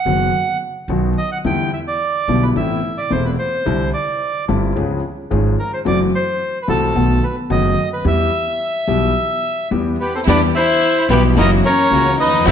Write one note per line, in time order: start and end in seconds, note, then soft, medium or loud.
0.00 0.57 F#5 medium
0.05 0.29 F#1 medium
0.05 0.29 F#2 medium
0.05 0.29 D#3 medium
0.05 0.29 F#3 soft
0.05 0.29 B3 soft
0.05 0.29 F#4 medium
0.88 1.12 B1 medium
0.88 1.12 B2 medium
0.88 1.12 D#3 soft
0.88 1.12 F#3 soft
0.88 1.12 B3 soft
0.88 1.13 F#4 medium
1.18 1.30 D#5 medium
1.32 1.38 F#5 medium
1.44 1.68 E2 medium
1.44 1.68 D3 medium
1.44 1.68 E3 medium
1.44 1.68 G3 soft
1.44 1.68 B3 soft
1.44 1.68 E4 medium
1.44 1.71 G5 medium
1.74 1.80 E5 medium
1.88 2.44 D5 medium
2.28 2.51 B1 medium
2.28 2.52 B1 medium
2.28 2.52 B2 medium
2.28 2.51 D3 medium
2.28 2.51 G3 medium
2.28 2.52 B3 soft
2.28 2.52 E4 medium
2.43 2.49 B4 medium
2.55 2.79 A1 medium
2.55 2.79 A2 medium
2.55 2.79 C3 medium
2.55 2.79 E3 soft
2.55 2.79 A3 soft
2.55 2.79 E4 medium
2.55 2.99 E5 medium
2.98 3.12 D5 medium
3.10 3.34 E1 medium
3.10 3.34 E2 medium
3.10 3.34 C3 medium
3.10 3.34 E3 soft
3.10 3.34 A3 soft
3.10 3.34 E4 medium
3.10 3.25 C5 medium
3.25 3.31 B4 medium
3.39 3.90 C5 medium
3.66 3.89 C2 medium
3.66 3.89 C3 medium
3.66 3.89 D3 medium
3.66 3.89 G3 soft
3.66 3.89 C4 medium
3.66 3.89 E4 medium
3.94 4.45 D5 medium
4.48 4.72 G1 medium
4.48 4.72 G2 medium
4.48 4.71 D3 medium
4.48 4.72 G3 medium
4.48 4.72 C4 medium
4.48 4.72 E4 medium
4.76 4.99 C#2 medium
4.76 4.99 C#3 medium
4.76 4.99 F3 soft
4.76 4.99 G#3 medium
4.76 4.99 C#4 soft
4.76 4.99 G#4 medium
5.30 5.54 G#1 medium
5.30 5.54 G#2 medium
5.30 5.54 F3 medium
5.30 5.54 G#3 medium
5.30 5.54 C#4 medium
5.30 5.54 G#4 medium
5.59 5.72 A#4 medium
5.74 5.79 C5 medium
5.85 6.09 F#1 medium
5.85 6.09 F#2 medium
5.85 6.09 E3 medium
5.85 6.09 F#3 medium
5.85 6.09 A3 medium
5.85 6.09 C4 medium
5.85 6.09 F#4 medium
5.85 5.99 D5 medium
6.15 6.59 C5 medium
6.62 6.69 B4 soft
6.68 6.91 C2 medium
6.68 6.91 C3 medium
6.68 6.91 E3 medium
6.68 6.91 A3 medium
6.68 6.91 C4 medium
6.68 6.91 F#4 medium
6.68 7.25 A4 medium
6.95 7.18 B1 medium
6.95 7.18 B2 medium
6.95 7.18 D#3 medium
6.95 7.18 A3 medium
6.95 7.18 B3 soft
6.95 7.19 F#4 medium
7.24 7.36 B4 medium
7.50 7.73 F#1 medium
7.50 7.73 F#2 medium
7.50 7.73 D#3 medium
7.50 7.73 A3 medium
7.50 7.73 B3 medium
7.50 7.73 F#4 medium
7.50 7.89 D#5 medium
7.93 8.05 B4 medium
8.05 8.28 E2 medium
8.05 8.28 E3 medium
8.05 8.28 G3 medium
8.05 8.28 B3 medium
8.05 8.29 G4 medium
8.05 9.68 E5 loud
8.88 9.11 B1 medium
8.88 9.11 B2 medium
8.88 9.11 E3 medium
8.88 9.11 G3 soft
8.88 9.11 B3 medium
8.88 9.11 G4 medium
9.71 9.95 E2 medium
9.71 9.95 E3 medium
9.71 9.95 G3 soft
9.71 9.95 B3 medium
9.71 9.95 G4 medium
10.00 10.12 B3 medium
10.00 10.13 G4 soft
10.00 10.14 B4 medium
10.14 10.20 C4 medium
10.14 10.21 A4 medium
10.14 10.21 C5 medium
10.27 10.50 E2 loud
10.27 10.51 E2 medium
10.27 10.51 E3 medium
10.27 10.51 G3 medium
10.27 10.50 B3 medium
10.27 10.51 B3 medium
10.27 10.40 D4 medium
10.27 10.50 E4 medium
10.27 10.50 G4 medium
10.27 10.51 G4 medium
10.27 10.41 B4 medium
10.27 10.41 D5 loud
10.55 11.06 E4 loud
10.55 11.07 C5 medium
10.55 11.06 E5 loud
11.09 11.32 B1 medium
11.09 11.33 B1 medium
11.09 11.33 B2 medium
11.09 11.33 E3 medium
11.09 11.33 G3 medium
11.09 11.22 B3 medium
11.09 11.33 B3 medium
11.09 11.33 E4 medium
11.09 11.33 G4 medium
11.09 11.23 G4 medium
11.09 11.22 B4 medium
11.36 11.60 F#1 loud
11.36 11.60 F#2 medium
11.36 11.60 E3 medium
11.36 11.60 F#3 medium
11.36 11.60 A#3 medium
11.36 11.60 C#4 medium
11.36 11.50 D#4 medium
11.36 11.60 E4 medium
11.36 11.60 F#4 medium
11.36 11.50 A#4 medium
11.36 11.50 D#5 loud
11.64 12.15 C#4 medium
11.64 12.16 A#4 medium
11.64 12.16 C#5 loud
11.91 12.14 C#2 medium
11.91 12.15 C#2 medium
11.91 12.15 C#3 medium
11.91 12.14 E3 soft
11.91 12.15 A#3 soft
11.91 12.15 A#3 medium
11.91 12.15 C#4 soft
11.91 12.15 E4 soft
11.91 12.15 F#4 medium
12.18 12.44 D#4 medium
12.18 12.45 B4 medium
12.18 12.45 D#5 loud
12.26 12.33 D#2 medium
12.32 12.39 E2 medium
12.39 12.46 F2 medium
12.45 12.52 F#1 loud
12.45 12.52 F#2 medium
12.45 12.52 D3 medium
12.45 12.52 F#3 loud
12.45 12.52 A3 medium
12.45 12.52 C4 medium
12.45 12.52 D4 medium
12.45 12.52 E4 loud
12.45 12.52 F#4 medium
12.45 12.52 C5 medium
12.45 12.52 E5 loud